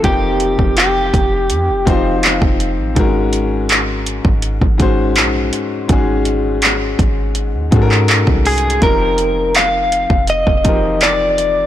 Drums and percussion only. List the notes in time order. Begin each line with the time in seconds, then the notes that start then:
0.04 kick, closed hi-hat
0.40 closed hi-hat
0.59 kick
0.77 clap, closed hi-hat
1.14 kick, closed hi-hat
1.50 closed hi-hat
1.87 kick, closed hi-hat
2.23 clap, closed hi-hat
2.42 kick
2.60 closed hi-hat
2.96 kick, closed hi-hat
3.33 closed hi-hat
3.69 clap, closed hi-hat
4.06 closed hi-hat
4.25 kick
4.42 closed hi-hat
4.61 kick
4.80 kick, closed hi-hat
5.16 clap, closed hi-hat
5.53 closed hi-hat
5.89 kick, closed hi-hat
6.25 closed hi-hat
6.62 clap, closed hi-hat
6.99 kick, closed hi-hat
7.35 closed hi-hat
7.72 kick, closed hi-hat
7.91 clap
8.08 clap, closed hi-hat
8.27 kick
8.46 closed hi-hat, open hi-hat
8.58 closed hi-hat
8.70 closed hi-hat
8.82 kick, closed hi-hat
9.18 closed hi-hat
9.55 clap, closed hi-hat
9.92 closed hi-hat
10.10 kick
10.27 closed hi-hat
10.47 kick
10.65 kick, closed hi-hat
11.01 clap, closed hi-hat
11.38 closed hi-hat